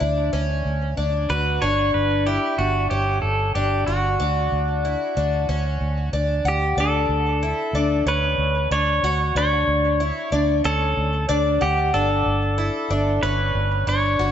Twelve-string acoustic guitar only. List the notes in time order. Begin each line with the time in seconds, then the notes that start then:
0.00 D4
0.33 C#4
0.97 D4
1.29 F#4
1.62 D4
2.27 E4
2.59 D4
2.91 C#4
3.55 D4
3.88 F#4
4.20 D4
4.85 E4
5.17 D4
5.49 C#4
6.13 D4
6.45 F#5
6.78 D4
7.43 E4
7.75 D4
8.07 C#4
8.71 D4
9.04 F#4
9.36 D4
10.00 E4
10.32 D4
10.64 C#4
11.29 D4
11.61 F#5
11.94 D4
12.58 E4
12.90 D4
13.23 C#4
13.87 D4
14.19 F#4